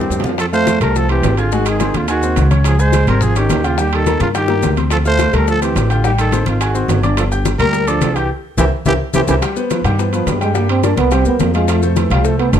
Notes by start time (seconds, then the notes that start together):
Already playing: G2 G3 G4 A#4
0.00 C4, low bongo
0.10 F2, low bongo, low timbale, maracas
0.20 low bongo, low timbale
0.24 F3 F4 F5, low conga, maracas
0.29 low bongo, low timbale
0.38 F3 A4, high bongo, high conga, high timbale, maracas
0.52 A3 F4 C5 F5 F6, high bongo, high conga, maracas
0.67 high bongo, high conga, high timbale, low timbale, maracas
0.80 C2 G3 A3 A4 A#4 A5, low conga, high timbale, maracas
0.95 F3 A4, high bongo, maracas
1.09 E3 C4 G4 C5 C6, high bongo, high conga, high timbale
1.23 G#1, high bongo, low bongo, high conga, high timbale, low timbale, maracas
1.37 D3 F4 G#4 G#5 G#6, high bongo, high conga, high timbale, maracas
1.52 D#3 G#3 F#4 G#4 G#5, high bongo, high conga, maracas
1.66 D#3 G#4, high bongo, high conga, high timbale, maracas
1.80 C4 C5 C6, high bongo, high conga, high timbale, low timbale, maracas
1.94 D#2 D3 F4, high conga, high timbale, maracas
2.08 D#3 F#4 G#4 G#5 G#6, high bongo, high conga, high timbale, maracas
2.23 C4 C5 C6, high conga, maracas
2.36 C#2, high bongo, low bongo, high conga, high timbale, low timbale, maracas
2.50 C#4 C#5 C#6, high bongo, high conga, high timbale, maracas
2.64 F3 G#4, high bongo, high timbale, maracas
2.78 G#3 G#4 C5 G#5 G#6, high bongo, high conga, maracas
2.92 high bongo, high conga, high timbale, low timbale, maracas
3.07 G#1 G3 C4 A#4 C5 C6, low conga, high timbale, maracas
3.21 F3 G#4, high bongo, high conga, low conga, maracas
3.35 D#3 C#4 G4 C#5 C#6, high bongo, high conga, high timbale, maracas
3.49 D#2, high bongo, low bongo, high conga, high timbale, low timbale, maracas
3.63 C#3 F4 G4 G5 G6, high bongo, high conga, high timbale, maracas
3.77 D#3 G3 G4 G5, high bongo, high conga, maracas
3.92 D#3 A4, high bongo, high conga, high timbale
4.06 A#3 A#4 A#5, high bongo, high conga, high timbale, low timbale, maracas
4.20 G2 C#3 F4, high conga, high timbale, maracas
4.35 D#3 G4 G5 G6, high bongo, high conga, high timbale, maracas
4.48 A#3 A#4 A#5, high bongo, high conga
4.62 D2, low bongo, high conga, high timbale, low timbale, maracas
4.76 C4 C5 C6, low bongo, high conga, high timbale, maracas
4.91 F3 A4, high bongo, high timbale, maracas
5.05 A3 F4 C5 F5 F6, high bongo, high conga, maracas
5.19 high bongo, high conga, high timbale, low timbale, maracas
5.33 D2 G3 A3 A4 A#4 A5, low conga, high timbale, maracas
5.47 F3 A4, high bongo, high conga, maracas
5.61 E3 C4 G4 C5 C6, high bongo, high conga, high timbale, maracas
5.76 A1, high bongo, low bongo, high conga, high timbale, low timbale, maracas
5.90 D3 F4 G4 G5 G6, high bongo, high conga, high timbale, maracas
6.04 D#3 G3 G4 G5, high bongo, high conga, maracas
6.18 D#3 A4, high bongo, high conga, high timbale, maracas
6.32 C4 C5 C6, high bongo, high conga, high timbale, low timbale, maracas
6.46 G#1 D#3 F4, high conga, high timbale, maracas
6.60 D#3 F#4 G#4 G#5 G#6, high bongo, high conga, high timbale, maracas
6.74 C4 C5 C6, high bongo, high conga, maracas
6.88 G1, high bongo, low bongo, high conga, high timbale, low timbale, maracas
7.03 D4 D5 D6, high bongo, high conga, high timbale, maracas
7.17 F3 A4, high bongo, high timbale, maracas
7.31 G4 G5 G6, high bongo, high conga, maracas
7.45 high bongo, high conga, high timbale, low timbale, maracas
7.59 D2 G3 A#3 A#4 A#5, low conga, high timbale, maracas
7.73 high bongo, high conga, maracas
7.87 F3 D4 A4 D5 D6, high bongo, high conga, high timbale, maracas
8.01 C2, high bongo, low bongo, high conga, high timbale, low timbale, maracas
8.14 E3 G4 G5 G6, high bongo, high conga, high timbale, maracas
8.57 C2 E3 G4 A#4 C5 E5, low bongo, high conga, high timbale, maracas
8.86 C2 E3 G4 A#4 C5 E5, low bongo, high conga, high timbale, maracas
9.14 C2 E3 G4 A#4 C5 E5, low bongo, high conga, high timbale, maracas
9.28 C2 E3 G4 A#4 C5 E5, low bongo, high conga, high timbale, maracas
9.42 G3 G4 G5, high bongo, high conga, high timbale, maracas
9.56 B3 B4 C5, high bongo, high conga, maracas
9.70 F3, high bongo, high conga, high timbale, low timbale, maracas
9.84 G2 D#3 G3 G4 G5, low conga, high timbale, maracas
9.98 E3 B3 B4 C5, high bongo, high conga, maracas
10.12 F3 B3 B4 C5, high bongo, high conga, high timbale, maracas
10.26 G2 G3, high bongo, low bongo, high conga, high timbale, low timbale, maracas
10.41 G3 G#3 G4 G5, high bongo, high conga, high timbale, maracas
10.54 G3 A#3 G4 G5, high bongo, high conga, maracas
10.69 C4, high bongo, high conga, high timbale
10.83 A#3 D4 A#4 D5, high bongo, high conga, high timbale, low timbale, maracas
10.97 C2 B3, high conga, high timbale, maracas
11.11 G3 C4 G4 G5, high bongo, high conga, high timbale, maracas
11.25 E2 A#3 B3 A#4 C5, high bongo, high conga, maracas
11.39 F2 A#3, high bongo, low bongo, high conga, high timbale, low timbale, maracas
11.54 F3 G#3 F4 F5, high bongo, high timbale, maracas
11.68 F3 A3 F4 F5, high bongo, high conga, high timbale, maracas
11.82 C3 A3 A4 C5, high bongo, high conga, maracas
11.96 E3, high bongo, high conga, high timbale, low timbale, maracas
12.10 C2 F3 G3 F4 F5, low conga, high timbale, maracas
12.24 A3 A4 C5, high bongo, high conga, maracas
12.39 A3 B3 A4 C5, high bongo, high conga, high timbale
12.53 F#1 D4, high bongo, low bongo, high conga, high timbale, low timbale, maracas